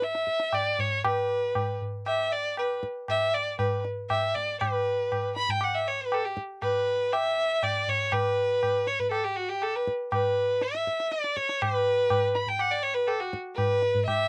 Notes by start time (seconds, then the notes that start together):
0.02 E5, tabla te
0.15 tabla te
0.27 tabla ke
0.40 tabla te
0.53 D5, tabla na, tabla ge
0.79 C#5, tabla ge
1.04 B4, tabla na, tabla ge
1.55 tabla na, tabla ge
1.81 tabla ge
2.06 E5, tabla na
2.32 D5
2.57 B4, tabla na
2.83 tabla ke
3.08 E5, tabla na, tabla ge
3.34 D5
3.59 B4, tabla na, tabla ge
3.85 tabla te
4.10 E5, tabla na, tabla ge
4.34 D5, tabla ge
4.59 B4, tabla na, tabla ge
5.12 tabla na, tabla ge
5.36 B5, tabla te
5.49 G5, tabla ge
5.61 F#5, tabla na
5.75 E5
5.88 C#5
6.01 B4
6.12 A4, tabla na
6.25 G4
6.37 tabla ke
6.62 B4, tabla na, tabla ge
7.12 E5, tabla na
7.63 D5, tabla na, tabla ge
7.88 C#5, tabla ge
8.12 B4, tabla na, tabla ge
8.63 tabla na, tabla ge
8.87 C#5, tabla te
9.00 B4, tabla ge
9.11 A4, tabla na
9.24 G4
9.36 F#4
9.49 G4
9.62 A4, tabla na
9.75 B4
9.87 tabla ke
10.12 B4, tabla na, tabla ge
10.61 E5, tabla te
10.75 tabla te
10.87 tabla ke
11.00 tabla te
11.11 D5, tabla te
11.24 tabla te
11.36 C#5, tabla ke
11.49 tabla te
11.61 B4, tabla na, tabla ge
12.10 tabla na, tabla ge
12.34 B5, tabla te
12.47 G5, tabla ge
12.59 F#5, tabla na
12.71 D5
12.83 C#5
12.94 B4
13.07 A4, tabla na
13.20 F#4
13.33 tabla ke
13.55 B4, tabla na, tabla ge
13.82 tabla te
13.95 tabla ge
14.06 E5, tabla na, tabla ge